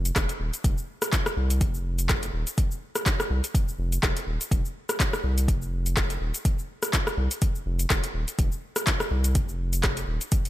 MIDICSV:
0, 0, Header, 1, 3, 480
1, 0, Start_track
1, 0, Tempo, 483871
1, 637, Time_signature, 4, 2, 24, 8
1, 10410, End_track
2, 0, Start_track
2, 0, Title_t, "Analog synth bass"
2, 0, Program_c, 0, 38
2, 0, Note_on_c, 0, 29, 87
2, 113, Note_off_c, 0, 29, 0
2, 158, Note_on_c, 0, 29, 106
2, 264, Note_off_c, 0, 29, 0
2, 395, Note_on_c, 0, 27, 86
2, 502, Note_off_c, 0, 27, 0
2, 638, Note_on_c, 0, 29, 105
2, 744, Note_off_c, 0, 29, 0
2, 1358, Note_on_c, 0, 36, 107
2, 1597, Note_on_c, 0, 29, 85
2, 1612, Note_off_c, 0, 36, 0
2, 2283, Note_off_c, 0, 29, 0
2, 2317, Note_on_c, 0, 27, 95
2, 2423, Note_off_c, 0, 27, 0
2, 3278, Note_on_c, 0, 36, 104
2, 3384, Note_off_c, 0, 36, 0
2, 3756, Note_on_c, 0, 29, 86
2, 3953, Note_off_c, 0, 29, 0
2, 3996, Note_on_c, 0, 29, 100
2, 4103, Note_off_c, 0, 29, 0
2, 4236, Note_on_c, 0, 27, 83
2, 4342, Note_off_c, 0, 27, 0
2, 4478, Note_on_c, 0, 29, 106
2, 4584, Note_off_c, 0, 29, 0
2, 5196, Note_on_c, 0, 36, 105
2, 5438, Note_on_c, 0, 29, 88
2, 5453, Note_off_c, 0, 36, 0
2, 6123, Note_off_c, 0, 29, 0
2, 6159, Note_on_c, 0, 27, 93
2, 6264, Note_off_c, 0, 27, 0
2, 7118, Note_on_c, 0, 36, 107
2, 7223, Note_off_c, 0, 36, 0
2, 7599, Note_on_c, 0, 29, 89
2, 7795, Note_off_c, 0, 29, 0
2, 7839, Note_on_c, 0, 29, 101
2, 7944, Note_off_c, 0, 29, 0
2, 8076, Note_on_c, 0, 27, 85
2, 8183, Note_off_c, 0, 27, 0
2, 8320, Note_on_c, 0, 29, 100
2, 8425, Note_off_c, 0, 29, 0
2, 9037, Note_on_c, 0, 36, 107
2, 9278, Note_on_c, 0, 29, 85
2, 9293, Note_off_c, 0, 36, 0
2, 9963, Note_off_c, 0, 29, 0
2, 9996, Note_on_c, 0, 27, 93
2, 10103, Note_off_c, 0, 27, 0
2, 10410, End_track
3, 0, Start_track
3, 0, Title_t, "Drums"
3, 52, Note_on_c, 9, 42, 33
3, 53, Note_on_c, 9, 82, 85
3, 151, Note_off_c, 9, 42, 0
3, 152, Note_off_c, 9, 82, 0
3, 158, Note_on_c, 9, 36, 115
3, 159, Note_on_c, 9, 37, 97
3, 159, Note_on_c, 9, 39, 95
3, 159, Note_on_c, 9, 42, 67
3, 160, Note_on_c, 9, 82, 67
3, 257, Note_off_c, 9, 36, 0
3, 258, Note_off_c, 9, 37, 0
3, 258, Note_off_c, 9, 39, 0
3, 258, Note_off_c, 9, 42, 0
3, 259, Note_off_c, 9, 82, 0
3, 290, Note_on_c, 9, 42, 48
3, 291, Note_on_c, 9, 82, 43
3, 390, Note_off_c, 9, 42, 0
3, 390, Note_off_c, 9, 82, 0
3, 531, Note_on_c, 9, 42, 32
3, 532, Note_on_c, 9, 82, 83
3, 630, Note_off_c, 9, 42, 0
3, 631, Note_off_c, 9, 82, 0
3, 638, Note_on_c, 9, 36, 127
3, 639, Note_on_c, 9, 42, 66
3, 640, Note_on_c, 9, 82, 71
3, 737, Note_off_c, 9, 36, 0
3, 738, Note_off_c, 9, 42, 0
3, 739, Note_off_c, 9, 82, 0
3, 771, Note_on_c, 9, 82, 42
3, 870, Note_off_c, 9, 82, 0
3, 1011, Note_on_c, 9, 37, 90
3, 1011, Note_on_c, 9, 42, 31
3, 1012, Note_on_c, 9, 82, 83
3, 1110, Note_off_c, 9, 37, 0
3, 1110, Note_off_c, 9, 42, 0
3, 1111, Note_off_c, 9, 82, 0
3, 1118, Note_on_c, 9, 36, 110
3, 1118, Note_on_c, 9, 39, 99
3, 1118, Note_on_c, 9, 42, 65
3, 1119, Note_on_c, 9, 82, 70
3, 1217, Note_off_c, 9, 36, 0
3, 1217, Note_off_c, 9, 39, 0
3, 1217, Note_off_c, 9, 42, 0
3, 1218, Note_off_c, 9, 82, 0
3, 1251, Note_on_c, 9, 37, 97
3, 1252, Note_on_c, 9, 82, 41
3, 1351, Note_off_c, 9, 37, 0
3, 1351, Note_off_c, 9, 82, 0
3, 1492, Note_on_c, 9, 42, 45
3, 1492, Note_on_c, 9, 82, 82
3, 1591, Note_off_c, 9, 42, 0
3, 1592, Note_off_c, 9, 82, 0
3, 1597, Note_on_c, 9, 36, 127
3, 1597, Note_on_c, 9, 42, 67
3, 1598, Note_on_c, 9, 82, 70
3, 1696, Note_off_c, 9, 42, 0
3, 1697, Note_off_c, 9, 36, 0
3, 1697, Note_off_c, 9, 82, 0
3, 1731, Note_on_c, 9, 82, 43
3, 1830, Note_off_c, 9, 82, 0
3, 1970, Note_on_c, 9, 42, 31
3, 1971, Note_on_c, 9, 82, 84
3, 2069, Note_off_c, 9, 42, 0
3, 2070, Note_off_c, 9, 82, 0
3, 2077, Note_on_c, 9, 36, 116
3, 2077, Note_on_c, 9, 37, 94
3, 2077, Note_on_c, 9, 39, 95
3, 2077, Note_on_c, 9, 42, 65
3, 2078, Note_on_c, 9, 82, 71
3, 2176, Note_off_c, 9, 36, 0
3, 2176, Note_off_c, 9, 37, 0
3, 2176, Note_off_c, 9, 39, 0
3, 2176, Note_off_c, 9, 42, 0
3, 2177, Note_off_c, 9, 82, 0
3, 2210, Note_on_c, 9, 42, 44
3, 2211, Note_on_c, 9, 82, 43
3, 2309, Note_off_c, 9, 42, 0
3, 2310, Note_off_c, 9, 82, 0
3, 2450, Note_on_c, 9, 42, 31
3, 2450, Note_on_c, 9, 82, 85
3, 2549, Note_off_c, 9, 42, 0
3, 2550, Note_off_c, 9, 82, 0
3, 2557, Note_on_c, 9, 36, 127
3, 2557, Note_on_c, 9, 42, 64
3, 2558, Note_on_c, 9, 82, 68
3, 2656, Note_off_c, 9, 36, 0
3, 2657, Note_off_c, 9, 42, 0
3, 2657, Note_off_c, 9, 82, 0
3, 2692, Note_on_c, 9, 82, 41
3, 2791, Note_off_c, 9, 82, 0
3, 2931, Note_on_c, 9, 37, 82
3, 2931, Note_on_c, 9, 42, 29
3, 2932, Note_on_c, 9, 82, 82
3, 3031, Note_off_c, 9, 37, 0
3, 3031, Note_off_c, 9, 42, 0
3, 3031, Note_off_c, 9, 82, 0
3, 3037, Note_on_c, 9, 36, 105
3, 3038, Note_on_c, 9, 39, 101
3, 3038, Note_on_c, 9, 42, 65
3, 3039, Note_on_c, 9, 82, 72
3, 3136, Note_off_c, 9, 36, 0
3, 3138, Note_off_c, 9, 39, 0
3, 3138, Note_off_c, 9, 42, 0
3, 3138, Note_off_c, 9, 82, 0
3, 3173, Note_on_c, 9, 37, 92
3, 3174, Note_on_c, 9, 82, 42
3, 3272, Note_off_c, 9, 37, 0
3, 3273, Note_off_c, 9, 82, 0
3, 3412, Note_on_c, 9, 42, 44
3, 3413, Note_on_c, 9, 82, 79
3, 3511, Note_off_c, 9, 42, 0
3, 3512, Note_off_c, 9, 82, 0
3, 3517, Note_on_c, 9, 36, 126
3, 3520, Note_on_c, 9, 42, 66
3, 3521, Note_on_c, 9, 82, 70
3, 3616, Note_off_c, 9, 36, 0
3, 3619, Note_off_c, 9, 42, 0
3, 3620, Note_off_c, 9, 82, 0
3, 3654, Note_on_c, 9, 82, 42
3, 3754, Note_off_c, 9, 82, 0
3, 3893, Note_on_c, 9, 42, 30
3, 3893, Note_on_c, 9, 82, 87
3, 3992, Note_off_c, 9, 42, 0
3, 3993, Note_off_c, 9, 82, 0
3, 3997, Note_on_c, 9, 36, 110
3, 4001, Note_on_c, 9, 37, 94
3, 4001, Note_on_c, 9, 39, 96
3, 4001, Note_on_c, 9, 42, 63
3, 4002, Note_on_c, 9, 82, 66
3, 4096, Note_off_c, 9, 36, 0
3, 4100, Note_off_c, 9, 37, 0
3, 4100, Note_off_c, 9, 39, 0
3, 4100, Note_off_c, 9, 42, 0
3, 4101, Note_off_c, 9, 82, 0
3, 4132, Note_on_c, 9, 42, 43
3, 4133, Note_on_c, 9, 82, 41
3, 4231, Note_off_c, 9, 42, 0
3, 4232, Note_off_c, 9, 82, 0
3, 4373, Note_on_c, 9, 42, 30
3, 4374, Note_on_c, 9, 82, 89
3, 4472, Note_off_c, 9, 42, 0
3, 4473, Note_off_c, 9, 82, 0
3, 4478, Note_on_c, 9, 36, 123
3, 4481, Note_on_c, 9, 42, 66
3, 4482, Note_on_c, 9, 82, 67
3, 4577, Note_off_c, 9, 36, 0
3, 4580, Note_off_c, 9, 42, 0
3, 4581, Note_off_c, 9, 82, 0
3, 4615, Note_on_c, 9, 82, 40
3, 4714, Note_off_c, 9, 82, 0
3, 4854, Note_on_c, 9, 37, 82
3, 4854, Note_on_c, 9, 42, 29
3, 4854, Note_on_c, 9, 82, 81
3, 4953, Note_off_c, 9, 37, 0
3, 4953, Note_off_c, 9, 42, 0
3, 4954, Note_off_c, 9, 82, 0
3, 4958, Note_on_c, 9, 36, 101
3, 4961, Note_on_c, 9, 39, 102
3, 4961, Note_on_c, 9, 42, 65
3, 4962, Note_on_c, 9, 82, 67
3, 5058, Note_off_c, 9, 36, 0
3, 5060, Note_off_c, 9, 39, 0
3, 5060, Note_off_c, 9, 42, 0
3, 5061, Note_off_c, 9, 82, 0
3, 5093, Note_on_c, 9, 37, 92
3, 5094, Note_on_c, 9, 82, 39
3, 5192, Note_off_c, 9, 37, 0
3, 5193, Note_off_c, 9, 82, 0
3, 5334, Note_on_c, 9, 42, 41
3, 5335, Note_on_c, 9, 82, 82
3, 5433, Note_off_c, 9, 42, 0
3, 5434, Note_off_c, 9, 82, 0
3, 5439, Note_on_c, 9, 36, 123
3, 5441, Note_on_c, 9, 42, 64
3, 5441, Note_on_c, 9, 82, 69
3, 5538, Note_off_c, 9, 36, 0
3, 5540, Note_off_c, 9, 42, 0
3, 5541, Note_off_c, 9, 82, 0
3, 5574, Note_on_c, 9, 82, 40
3, 5674, Note_off_c, 9, 82, 0
3, 5813, Note_on_c, 9, 42, 29
3, 5814, Note_on_c, 9, 82, 81
3, 5913, Note_off_c, 9, 42, 0
3, 5914, Note_off_c, 9, 82, 0
3, 5919, Note_on_c, 9, 36, 112
3, 5921, Note_on_c, 9, 37, 91
3, 5921, Note_on_c, 9, 39, 100
3, 5921, Note_on_c, 9, 42, 64
3, 5921, Note_on_c, 9, 82, 67
3, 6019, Note_off_c, 9, 36, 0
3, 6020, Note_off_c, 9, 37, 0
3, 6020, Note_off_c, 9, 39, 0
3, 6020, Note_off_c, 9, 42, 0
3, 6021, Note_off_c, 9, 82, 0
3, 6053, Note_on_c, 9, 42, 47
3, 6053, Note_on_c, 9, 82, 41
3, 6152, Note_off_c, 9, 42, 0
3, 6153, Note_off_c, 9, 82, 0
3, 6293, Note_on_c, 9, 42, 32
3, 6294, Note_on_c, 9, 82, 83
3, 6392, Note_off_c, 9, 42, 0
3, 6393, Note_off_c, 9, 82, 0
3, 6399, Note_on_c, 9, 36, 121
3, 6400, Note_on_c, 9, 42, 69
3, 6400, Note_on_c, 9, 82, 65
3, 6498, Note_off_c, 9, 36, 0
3, 6499, Note_off_c, 9, 42, 0
3, 6500, Note_off_c, 9, 82, 0
3, 6535, Note_on_c, 9, 82, 38
3, 6634, Note_off_c, 9, 82, 0
3, 6771, Note_on_c, 9, 37, 81
3, 6771, Note_on_c, 9, 42, 31
3, 6772, Note_on_c, 9, 82, 79
3, 6870, Note_off_c, 9, 37, 0
3, 6870, Note_off_c, 9, 42, 0
3, 6871, Note_off_c, 9, 82, 0
3, 6879, Note_on_c, 9, 36, 97
3, 6879, Note_on_c, 9, 39, 105
3, 6879, Note_on_c, 9, 42, 65
3, 6880, Note_on_c, 9, 82, 67
3, 6978, Note_off_c, 9, 36, 0
3, 6978, Note_off_c, 9, 39, 0
3, 6978, Note_off_c, 9, 42, 0
3, 6979, Note_off_c, 9, 82, 0
3, 7013, Note_on_c, 9, 37, 92
3, 7014, Note_on_c, 9, 82, 40
3, 7113, Note_off_c, 9, 37, 0
3, 7113, Note_off_c, 9, 82, 0
3, 7252, Note_on_c, 9, 42, 45
3, 7253, Note_on_c, 9, 82, 74
3, 7351, Note_off_c, 9, 42, 0
3, 7352, Note_off_c, 9, 82, 0
3, 7358, Note_on_c, 9, 42, 66
3, 7359, Note_on_c, 9, 36, 115
3, 7359, Note_on_c, 9, 82, 65
3, 7457, Note_off_c, 9, 42, 0
3, 7458, Note_off_c, 9, 36, 0
3, 7458, Note_off_c, 9, 82, 0
3, 7493, Note_on_c, 9, 82, 40
3, 7592, Note_off_c, 9, 82, 0
3, 7732, Note_on_c, 9, 42, 30
3, 7732, Note_on_c, 9, 82, 76
3, 7831, Note_off_c, 9, 42, 0
3, 7832, Note_off_c, 9, 82, 0
3, 7839, Note_on_c, 9, 36, 109
3, 7839, Note_on_c, 9, 37, 87
3, 7839, Note_on_c, 9, 39, 105
3, 7839, Note_on_c, 9, 42, 65
3, 7840, Note_on_c, 9, 82, 65
3, 7939, Note_off_c, 9, 36, 0
3, 7939, Note_off_c, 9, 37, 0
3, 7939, Note_off_c, 9, 39, 0
3, 7939, Note_off_c, 9, 42, 0
3, 7939, Note_off_c, 9, 82, 0
3, 7972, Note_on_c, 9, 42, 46
3, 7973, Note_on_c, 9, 82, 38
3, 8071, Note_off_c, 9, 42, 0
3, 8072, Note_off_c, 9, 82, 0
3, 8212, Note_on_c, 9, 42, 33
3, 8213, Note_on_c, 9, 82, 78
3, 8312, Note_off_c, 9, 42, 0
3, 8312, Note_off_c, 9, 82, 0
3, 8319, Note_on_c, 9, 36, 112
3, 8319, Note_on_c, 9, 42, 71
3, 8320, Note_on_c, 9, 82, 61
3, 8418, Note_off_c, 9, 36, 0
3, 8419, Note_off_c, 9, 42, 0
3, 8419, Note_off_c, 9, 82, 0
3, 8452, Note_on_c, 9, 82, 39
3, 8551, Note_off_c, 9, 82, 0
3, 8690, Note_on_c, 9, 37, 84
3, 8690, Note_on_c, 9, 42, 31
3, 8691, Note_on_c, 9, 82, 76
3, 8790, Note_off_c, 9, 37, 0
3, 8790, Note_off_c, 9, 42, 0
3, 8790, Note_off_c, 9, 82, 0
3, 8799, Note_on_c, 9, 36, 101
3, 8799, Note_on_c, 9, 39, 112
3, 8799, Note_on_c, 9, 42, 70
3, 8799, Note_on_c, 9, 82, 62
3, 8898, Note_off_c, 9, 36, 0
3, 8898, Note_off_c, 9, 39, 0
3, 8898, Note_off_c, 9, 42, 0
3, 8899, Note_off_c, 9, 82, 0
3, 8930, Note_on_c, 9, 37, 91
3, 8931, Note_on_c, 9, 82, 37
3, 9029, Note_off_c, 9, 37, 0
3, 9030, Note_off_c, 9, 82, 0
3, 9169, Note_on_c, 9, 42, 44
3, 9170, Note_on_c, 9, 82, 77
3, 9268, Note_off_c, 9, 42, 0
3, 9269, Note_off_c, 9, 82, 0
3, 9276, Note_on_c, 9, 42, 69
3, 9277, Note_on_c, 9, 82, 63
3, 9278, Note_on_c, 9, 36, 114
3, 9376, Note_off_c, 9, 42, 0
3, 9376, Note_off_c, 9, 82, 0
3, 9377, Note_off_c, 9, 36, 0
3, 9412, Note_on_c, 9, 82, 39
3, 9511, Note_off_c, 9, 82, 0
3, 9651, Note_on_c, 9, 42, 33
3, 9652, Note_on_c, 9, 82, 75
3, 9750, Note_off_c, 9, 42, 0
3, 9751, Note_off_c, 9, 82, 0
3, 9756, Note_on_c, 9, 37, 91
3, 9756, Note_on_c, 9, 39, 102
3, 9756, Note_on_c, 9, 42, 71
3, 9757, Note_on_c, 9, 36, 103
3, 9757, Note_on_c, 9, 82, 61
3, 9855, Note_off_c, 9, 37, 0
3, 9855, Note_off_c, 9, 39, 0
3, 9855, Note_off_c, 9, 42, 0
3, 9856, Note_off_c, 9, 82, 0
3, 9857, Note_off_c, 9, 36, 0
3, 9890, Note_on_c, 9, 42, 48
3, 9891, Note_on_c, 9, 82, 40
3, 9989, Note_off_c, 9, 42, 0
3, 9990, Note_off_c, 9, 82, 0
3, 10129, Note_on_c, 9, 42, 34
3, 10130, Note_on_c, 9, 82, 79
3, 10228, Note_off_c, 9, 42, 0
3, 10229, Note_off_c, 9, 82, 0
3, 10235, Note_on_c, 9, 42, 73
3, 10236, Note_on_c, 9, 82, 63
3, 10237, Note_on_c, 9, 36, 118
3, 10334, Note_off_c, 9, 42, 0
3, 10335, Note_off_c, 9, 82, 0
3, 10336, Note_off_c, 9, 36, 0
3, 10369, Note_on_c, 9, 42, 33
3, 10370, Note_on_c, 9, 82, 40
3, 10410, Note_off_c, 9, 42, 0
3, 10410, Note_off_c, 9, 82, 0
3, 10410, End_track
0, 0, End_of_file